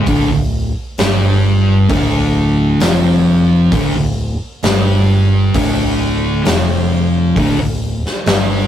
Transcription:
0, 0, Header, 1, 4, 480
1, 0, Start_track
1, 0, Key_signature, -1, "minor"
1, 0, Tempo, 910470
1, 44, Time_signature, 4, 2, 24, 8
1, 4572, End_track
2, 0, Start_track
2, 0, Title_t, "Distorted electric guitar"
2, 0, Program_c, 0, 30
2, 38, Note_on_c, 0, 38, 90
2, 44, Note_on_c, 0, 50, 92
2, 148, Note_off_c, 0, 38, 0
2, 154, Note_on_c, 0, 38, 72
2, 157, Note_off_c, 0, 50, 0
2, 352, Note_off_c, 0, 38, 0
2, 522, Note_on_c, 0, 43, 91
2, 526, Note_on_c, 0, 55, 91
2, 997, Note_off_c, 0, 43, 0
2, 999, Note_off_c, 0, 55, 0
2, 999, Note_on_c, 0, 38, 84
2, 1006, Note_on_c, 0, 50, 104
2, 1476, Note_off_c, 0, 38, 0
2, 1479, Note_off_c, 0, 50, 0
2, 1488, Note_on_c, 0, 41, 81
2, 1491, Note_on_c, 0, 53, 105
2, 1959, Note_off_c, 0, 41, 0
2, 1961, Note_off_c, 0, 53, 0
2, 1969, Note_on_c, 0, 38, 86
2, 1974, Note_on_c, 0, 50, 90
2, 2080, Note_off_c, 0, 38, 0
2, 2082, Note_off_c, 0, 50, 0
2, 2087, Note_on_c, 0, 38, 75
2, 2278, Note_off_c, 0, 38, 0
2, 2446, Note_on_c, 0, 43, 82
2, 2450, Note_on_c, 0, 55, 100
2, 2918, Note_off_c, 0, 43, 0
2, 2920, Note_off_c, 0, 55, 0
2, 2928, Note_on_c, 0, 38, 92
2, 2933, Note_on_c, 0, 50, 107
2, 3398, Note_off_c, 0, 38, 0
2, 3401, Note_off_c, 0, 50, 0
2, 3407, Note_on_c, 0, 41, 90
2, 3414, Note_on_c, 0, 53, 104
2, 3877, Note_off_c, 0, 41, 0
2, 3881, Note_off_c, 0, 53, 0
2, 3892, Note_on_c, 0, 38, 86
2, 3897, Note_on_c, 0, 50, 93
2, 4000, Note_off_c, 0, 38, 0
2, 4002, Note_off_c, 0, 50, 0
2, 4008, Note_on_c, 0, 38, 76
2, 4197, Note_off_c, 0, 38, 0
2, 4362, Note_on_c, 0, 43, 91
2, 4364, Note_on_c, 0, 55, 94
2, 4572, Note_off_c, 0, 43, 0
2, 4572, Note_off_c, 0, 55, 0
2, 4572, End_track
3, 0, Start_track
3, 0, Title_t, "Fingered electric bass"
3, 0, Program_c, 1, 33
3, 33, Note_on_c, 1, 26, 94
3, 148, Note_off_c, 1, 26, 0
3, 151, Note_on_c, 1, 26, 72
3, 381, Note_off_c, 1, 26, 0
3, 518, Note_on_c, 1, 31, 97
3, 981, Note_off_c, 1, 31, 0
3, 999, Note_on_c, 1, 26, 99
3, 1462, Note_off_c, 1, 26, 0
3, 1477, Note_on_c, 1, 29, 89
3, 1940, Note_off_c, 1, 29, 0
3, 1958, Note_on_c, 1, 26, 92
3, 2073, Note_off_c, 1, 26, 0
3, 2077, Note_on_c, 1, 26, 76
3, 2304, Note_off_c, 1, 26, 0
3, 2442, Note_on_c, 1, 31, 92
3, 2902, Note_off_c, 1, 31, 0
3, 2922, Note_on_c, 1, 26, 99
3, 3381, Note_off_c, 1, 26, 0
3, 3401, Note_on_c, 1, 29, 94
3, 3860, Note_off_c, 1, 29, 0
3, 3879, Note_on_c, 1, 26, 93
3, 3992, Note_off_c, 1, 26, 0
3, 4002, Note_on_c, 1, 26, 76
3, 4225, Note_off_c, 1, 26, 0
3, 4356, Note_on_c, 1, 31, 100
3, 4572, Note_off_c, 1, 31, 0
3, 4572, End_track
4, 0, Start_track
4, 0, Title_t, "Drums"
4, 33, Note_on_c, 9, 46, 54
4, 37, Note_on_c, 9, 36, 103
4, 86, Note_off_c, 9, 46, 0
4, 90, Note_off_c, 9, 36, 0
4, 516, Note_on_c, 9, 46, 50
4, 522, Note_on_c, 9, 38, 97
4, 568, Note_off_c, 9, 46, 0
4, 575, Note_off_c, 9, 38, 0
4, 997, Note_on_c, 9, 46, 55
4, 1000, Note_on_c, 9, 36, 102
4, 1050, Note_off_c, 9, 46, 0
4, 1052, Note_off_c, 9, 36, 0
4, 1478, Note_on_c, 9, 46, 57
4, 1485, Note_on_c, 9, 38, 115
4, 1530, Note_off_c, 9, 46, 0
4, 1537, Note_off_c, 9, 38, 0
4, 1961, Note_on_c, 9, 36, 107
4, 1961, Note_on_c, 9, 46, 58
4, 2014, Note_off_c, 9, 36, 0
4, 2014, Note_off_c, 9, 46, 0
4, 2440, Note_on_c, 9, 46, 55
4, 2447, Note_on_c, 9, 38, 111
4, 2492, Note_off_c, 9, 46, 0
4, 2499, Note_off_c, 9, 38, 0
4, 2923, Note_on_c, 9, 36, 111
4, 2923, Note_on_c, 9, 46, 63
4, 2975, Note_off_c, 9, 46, 0
4, 2976, Note_off_c, 9, 36, 0
4, 3403, Note_on_c, 9, 46, 58
4, 3410, Note_on_c, 9, 38, 111
4, 3455, Note_off_c, 9, 46, 0
4, 3462, Note_off_c, 9, 38, 0
4, 3882, Note_on_c, 9, 36, 101
4, 3882, Note_on_c, 9, 46, 55
4, 3934, Note_off_c, 9, 36, 0
4, 3935, Note_off_c, 9, 46, 0
4, 4248, Note_on_c, 9, 38, 28
4, 4301, Note_off_c, 9, 38, 0
4, 4356, Note_on_c, 9, 46, 51
4, 4363, Note_on_c, 9, 38, 110
4, 4409, Note_off_c, 9, 46, 0
4, 4416, Note_off_c, 9, 38, 0
4, 4572, End_track
0, 0, End_of_file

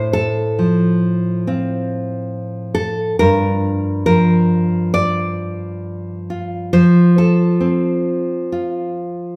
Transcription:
0, 0, Header, 1, 2, 480
1, 0, Start_track
1, 0, Tempo, 875912
1, 1748, Time_signature, 4, 2, 24, 8
1, 2710, Tempo, 895522
1, 5076, End_track
2, 0, Start_track
2, 0, Title_t, "Nylon-string guitar"
2, 0, Program_c, 0, 24
2, 0, Note_on_c, 0, 45, 69
2, 0, Note_on_c, 0, 72, 89
2, 68, Note_off_c, 0, 72, 0
2, 73, Note_on_c, 0, 69, 88
2, 322, Note_on_c, 0, 53, 57
2, 807, Note_on_c, 0, 60, 45
2, 810, Note_on_c, 0, 65, 46
2, 1498, Note_off_c, 0, 69, 0
2, 1504, Note_on_c, 0, 69, 84
2, 1721, Note_off_c, 0, 45, 0
2, 1745, Note_off_c, 0, 69, 0
2, 1749, Note_on_c, 0, 70, 90
2, 1757, Note_on_c, 0, 43, 68
2, 1766, Note_off_c, 0, 60, 0
2, 1773, Note_off_c, 0, 65, 0
2, 2218, Note_off_c, 0, 70, 0
2, 2223, Note_off_c, 0, 53, 0
2, 2225, Note_on_c, 0, 53, 60
2, 2225, Note_on_c, 0, 70, 83
2, 2704, Note_off_c, 0, 70, 0
2, 2706, Note_on_c, 0, 74, 101
2, 3436, Note_on_c, 0, 65, 45
2, 3664, Note_off_c, 0, 53, 0
2, 3664, Note_off_c, 0, 74, 0
2, 3666, Note_on_c, 0, 53, 73
2, 3667, Note_on_c, 0, 72, 87
2, 3670, Note_off_c, 0, 43, 0
2, 3903, Note_off_c, 0, 72, 0
2, 3908, Note_on_c, 0, 69, 79
2, 4135, Note_on_c, 0, 60, 59
2, 4626, Note_off_c, 0, 65, 0
2, 4628, Note_on_c, 0, 65, 43
2, 5076, Note_off_c, 0, 53, 0
2, 5076, Note_off_c, 0, 60, 0
2, 5076, Note_off_c, 0, 65, 0
2, 5076, Note_off_c, 0, 69, 0
2, 5076, End_track
0, 0, End_of_file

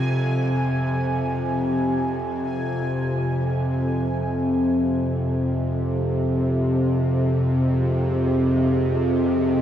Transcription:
0, 0, Header, 1, 4, 480
1, 0, Start_track
1, 0, Key_signature, -4, "minor"
1, 0, Tempo, 500000
1, 9230, End_track
2, 0, Start_track
2, 0, Title_t, "Synth texture"
2, 0, Program_c, 0, 99
2, 0, Note_on_c, 0, 80, 77
2, 3715, Note_off_c, 0, 80, 0
2, 9230, End_track
3, 0, Start_track
3, 0, Title_t, "Ambient pad"
3, 0, Program_c, 1, 92
3, 3697, Note_on_c, 1, 65, 71
3, 4068, Note_on_c, 1, 68, 64
3, 6319, Note_on_c, 1, 75, 67
3, 9230, Note_off_c, 1, 65, 0
3, 9230, Note_off_c, 1, 68, 0
3, 9230, Note_off_c, 1, 75, 0
3, 9230, End_track
4, 0, Start_track
4, 0, Title_t, "Synth drone"
4, 0, Program_c, 2, 95
4, 0, Note_on_c, 2, 41, 66
4, 0, Note_on_c, 2, 48, 67
4, 3682, Note_off_c, 2, 41, 0
4, 3691, Note_off_c, 2, 48, 0
4, 3694, Note_on_c, 2, 41, 72
4, 3702, Note_on_c, 2, 48, 69
4, 9230, Note_off_c, 2, 41, 0
4, 9230, Note_off_c, 2, 48, 0
4, 9230, End_track
0, 0, End_of_file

